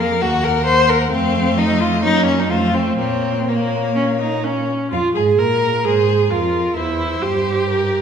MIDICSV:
0, 0, Header, 1, 5, 480
1, 0, Start_track
1, 0, Key_signature, -5, "minor"
1, 0, Tempo, 453172
1, 1186, Time_signature, 4, 2, 24, 8
1, 2153, Tempo, 481155
1, 5032, Key_signature, -4, "minor"
1, 5033, Tempo, 460123
1, 8263, End_track
2, 0, Start_track
2, 0, Title_t, "Violin"
2, 0, Program_c, 0, 40
2, 0, Note_on_c, 0, 77, 55
2, 226, Note_on_c, 0, 78, 64
2, 242, Note_off_c, 0, 77, 0
2, 1180, Note_off_c, 0, 78, 0
2, 1187, Note_on_c, 0, 77, 66
2, 1671, Note_on_c, 0, 75, 71
2, 1687, Note_off_c, 0, 77, 0
2, 2144, Note_on_c, 0, 73, 69
2, 2160, Note_off_c, 0, 75, 0
2, 2611, Note_off_c, 0, 73, 0
2, 2617, Note_on_c, 0, 72, 59
2, 3089, Note_off_c, 0, 72, 0
2, 3099, Note_on_c, 0, 73, 55
2, 3576, Note_off_c, 0, 73, 0
2, 3590, Note_on_c, 0, 73, 59
2, 4805, Note_off_c, 0, 73, 0
2, 5043, Note_on_c, 0, 65, 65
2, 5126, Note_off_c, 0, 65, 0
2, 5279, Note_on_c, 0, 68, 65
2, 5362, Note_off_c, 0, 68, 0
2, 5517, Note_on_c, 0, 70, 66
2, 5990, Note_off_c, 0, 70, 0
2, 6009, Note_on_c, 0, 68, 63
2, 6476, Note_on_c, 0, 65, 58
2, 6492, Note_off_c, 0, 68, 0
2, 6959, Note_off_c, 0, 65, 0
2, 6965, Note_on_c, 0, 64, 54
2, 7455, Note_on_c, 0, 67, 60
2, 7470, Note_off_c, 0, 64, 0
2, 8263, Note_off_c, 0, 67, 0
2, 8263, End_track
3, 0, Start_track
3, 0, Title_t, "Violin"
3, 0, Program_c, 1, 40
3, 0, Note_on_c, 1, 70, 89
3, 224, Note_on_c, 1, 66, 102
3, 240, Note_off_c, 1, 70, 0
3, 461, Note_on_c, 1, 70, 90
3, 477, Note_off_c, 1, 66, 0
3, 690, Note_off_c, 1, 70, 0
3, 696, Note_on_c, 1, 72, 105
3, 943, Note_on_c, 1, 70, 87
3, 959, Note_off_c, 1, 72, 0
3, 1177, Note_off_c, 1, 70, 0
3, 1183, Note_on_c, 1, 60, 92
3, 1670, Note_on_c, 1, 63, 91
3, 1686, Note_off_c, 1, 60, 0
3, 1904, Note_on_c, 1, 65, 81
3, 1920, Note_off_c, 1, 63, 0
3, 2142, Note_off_c, 1, 65, 0
3, 2149, Note_on_c, 1, 63, 111
3, 2374, Note_off_c, 1, 63, 0
3, 2380, Note_on_c, 1, 61, 88
3, 2513, Note_on_c, 1, 63, 79
3, 2528, Note_off_c, 1, 61, 0
3, 2615, Note_on_c, 1, 65, 89
3, 2630, Note_off_c, 1, 63, 0
3, 2862, Note_on_c, 1, 60, 83
3, 2877, Note_off_c, 1, 65, 0
3, 3098, Note_off_c, 1, 60, 0
3, 3104, Note_on_c, 1, 60, 81
3, 3594, Note_on_c, 1, 58, 62
3, 3609, Note_off_c, 1, 60, 0
3, 4800, Note_off_c, 1, 58, 0
3, 5999, Note_on_c, 1, 72, 56
3, 6445, Note_off_c, 1, 72, 0
3, 6475, Note_on_c, 1, 70, 53
3, 6958, Note_on_c, 1, 72, 60
3, 6974, Note_off_c, 1, 70, 0
3, 7912, Note_off_c, 1, 72, 0
3, 7919, Note_on_c, 1, 70, 58
3, 8263, Note_off_c, 1, 70, 0
3, 8263, End_track
4, 0, Start_track
4, 0, Title_t, "Viola"
4, 0, Program_c, 2, 41
4, 0, Note_on_c, 2, 58, 63
4, 219, Note_off_c, 2, 58, 0
4, 224, Note_on_c, 2, 58, 61
4, 1163, Note_off_c, 2, 58, 0
4, 1182, Note_on_c, 2, 57, 72
4, 2146, Note_on_c, 2, 58, 66
4, 2161, Note_off_c, 2, 57, 0
4, 2604, Note_off_c, 2, 58, 0
4, 2610, Note_on_c, 2, 57, 64
4, 3093, Note_on_c, 2, 58, 56
4, 3108, Note_off_c, 2, 57, 0
4, 3576, Note_off_c, 2, 58, 0
4, 3582, Note_on_c, 2, 58, 66
4, 4035, Note_off_c, 2, 58, 0
4, 4068, Note_on_c, 2, 61, 71
4, 4148, Note_off_c, 2, 61, 0
4, 4312, Note_on_c, 2, 63, 68
4, 4552, Note_on_c, 2, 61, 60
4, 4567, Note_off_c, 2, 63, 0
4, 5026, Note_off_c, 2, 61, 0
4, 5032, Note_on_c, 2, 65, 73
4, 5257, Note_off_c, 2, 65, 0
4, 5275, Note_on_c, 2, 68, 68
4, 5517, Note_on_c, 2, 70, 77
4, 5532, Note_off_c, 2, 68, 0
4, 6002, Note_on_c, 2, 68, 71
4, 6017, Note_off_c, 2, 70, 0
4, 6477, Note_on_c, 2, 65, 68
4, 6493, Note_off_c, 2, 68, 0
4, 6954, Note_off_c, 2, 65, 0
4, 6960, Note_on_c, 2, 64, 67
4, 7438, Note_on_c, 2, 67, 74
4, 7454, Note_off_c, 2, 64, 0
4, 8263, Note_off_c, 2, 67, 0
4, 8263, End_track
5, 0, Start_track
5, 0, Title_t, "Cello"
5, 0, Program_c, 3, 42
5, 0, Note_on_c, 3, 41, 64
5, 231, Note_on_c, 3, 39, 62
5, 247, Note_off_c, 3, 41, 0
5, 1183, Note_off_c, 3, 39, 0
5, 1189, Note_on_c, 3, 41, 73
5, 2155, Note_on_c, 3, 42, 69
5, 2170, Note_off_c, 3, 41, 0
5, 2621, Note_on_c, 3, 41, 72
5, 2636, Note_off_c, 3, 42, 0
5, 3095, Note_off_c, 3, 41, 0
5, 3101, Note_on_c, 3, 46, 63
5, 4794, Note_off_c, 3, 46, 0
5, 5036, Note_on_c, 3, 41, 63
5, 5120, Note_off_c, 3, 41, 0
5, 5280, Note_on_c, 3, 44, 63
5, 5511, Note_off_c, 3, 44, 0
5, 5517, Note_on_c, 3, 46, 57
5, 6001, Note_on_c, 3, 44, 56
5, 6017, Note_off_c, 3, 46, 0
5, 6473, Note_off_c, 3, 44, 0
5, 6479, Note_on_c, 3, 41, 59
5, 6951, Note_off_c, 3, 41, 0
5, 6960, Note_on_c, 3, 40, 59
5, 7432, Note_off_c, 3, 40, 0
5, 7442, Note_on_c, 3, 43, 55
5, 8263, Note_off_c, 3, 43, 0
5, 8263, End_track
0, 0, End_of_file